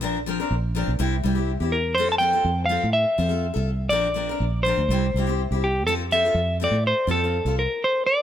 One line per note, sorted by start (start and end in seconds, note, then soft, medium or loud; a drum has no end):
0.01 0.44 A#1 medium
0.01 0.16 F3 medium
0.01 0.17 C4 medium
0.01 0.17 D4 medium
0.01 0.18 A#4 medium
0.26 0.39 F3 medium
0.26 0.39 C4 medium
0.26 0.39 D4 medium
0.26 0.38 A#4 medium
0.40 0.54 C4 soft
0.40 0.54 D4 soft
0.40 0.54 A#4 medium
0.51 0.83 A#1 medium
0.75 0.90 F3 medium
0.75 0.91 C4 medium
0.75 0.91 D4 medium
0.75 0.91 A#4 medium
0.88 0.98 B1 medium
0.99 1.21 C2 medium
0.99 1.14 G3 medium
0.99 1.14 C4 medium
0.99 1.15 E4 medium
0.99 1.15 G4 medium
1.24 1.56 C2 medium
1.24 1.36 G3 medium
1.24 1.36 C4 medium
1.24 1.35 E4 medium
1.24 1.34 G4 medium
1.35 1.51 C4 soft
1.35 1.51 E4 soft
1.35 1.50 G4 medium
1.60 1.96 E2 medium
1.60 1.76 C4 soft
1.60 1.76 E4 soft
1.60 1.75 G4 soft
1.72 1.95 A#4 medium
1.95 2.39 F2 medium
1.95 2.12 F3 medium
1.95 2.12 C4 medium
1.95 2.11 C5 loud
1.99 2.13 F4 medium
1.99 2.13 A4 medium
2.12 2.18 A5 medium
2.18 2.33 F3 medium
2.18 2.33 C4 medium
2.18 2.32 F4 medium
2.18 2.65 G5 medium
2.23 2.32 A4 medium
2.33 2.49 C4 soft
2.33 2.48 F4 soft
2.33 2.48 A4 soft
2.45 2.77 F2 medium
2.66 2.84 F3 soft
2.66 2.85 C4 medium
2.66 2.90 F5 medium
2.70 2.85 F4 medium
2.70 2.85 A4 medium
2.83 3.04 A2 medium
2.93 3.87 E5 loud
3.18 3.51 F2 medium
3.18 3.31 F3 soft
3.18 3.30 C4 soft
3.18 3.29 F4 medium
3.18 3.28 A4 medium
3.29 3.46 C4 soft
3.29 3.45 F4 soft
3.29 3.44 A4 soft
3.54 3.92 C2 medium
3.54 3.70 F4 soft
3.54 3.69 A4 medium
3.54 muted steel-string acoustic guitar stroke soft
3.89 4.34 A#1 medium
3.89 4.06 F3 medium
3.89 4.06 C4 medium
3.89 4.06 D4 medium
3.89 4.07 A#4 medium
3.89 4.63 D5 medium
4.14 4.27 F3 soft
4.14 4.28 C4 soft
4.14 4.28 D4 medium
4.14 4.28 A#4 medium
4.29 4.44 C4 soft
4.29 4.44 D4 soft
4.29 4.43 A#4 soft
4.40 4.72 A#1 medium
4.63 4.79 F3 medium
4.63 4.80 C4 medium
4.63 4.80 D4 medium
4.63 5.33 C5 medium
4.68 4.81 A#4 medium
4.78 4.88 D2 medium
4.89 5.10 C2 medium
4.89 5.05 G3 medium
4.89 5.05 C4 medium
4.89 5.05 E4 medium
4.89 5.05 G4 medium
5.14 5.46 C2 medium
5.14 5.27 G3 soft
5.14 5.28 C4 medium
5.19 5.28 E4 medium
5.19 5.26 G4 medium
5.27 5.42 C4 soft
5.27 5.42 E4 soft
5.27 5.41 G4 soft
5.51 5.86 C2 medium
5.51 5.66 E4 soft
5.51 5.65 G4 soft
5.55 5.67 C4 soft
5.64 5.86 G4 medium
5.86 6.28 F2 medium
5.86 6.02 F3 medium
5.86 6.02 C4 medium
5.86 6.02 F4 medium
5.86 5.93 A4 loud
5.86 6.03 A4 medium
6.11 6.23 F3 medium
6.11 6.24 C4 medium
6.11 6.24 F4 medium
6.11 6.24 A4 medium
6.11 6.57 E5 loud
6.25 6.40 C4 soft
6.25 6.39 F4 soft
6.25 6.38 A4 soft
6.35 6.67 F2 medium
6.60 6.74 F3 medium
6.60 6.75 C4 medium
6.60 6.75 F4 medium
6.60 6.76 A4 medium
6.60 6.87 D5 medium
6.71 6.92 A2 medium
6.87 7.08 C5 medium
7.07 7.40 F2 medium
7.07 7.20 F3 soft
7.07 7.21 C4 soft
7.07 7.20 F4 medium
7.07 7.21 A4 medium
7.07 7.58 A4 medium
7.24 7.37 C4 soft
7.24 7.36 F4 soft
7.45 7.66 C2 medium
7.45 7.61 C4 soft
7.45 7.60 F4 soft
7.45 7.60 A4 soft
7.59 7.83 A#4 medium
7.84 8.06 C5 loud
8.06 8.22 D5 medium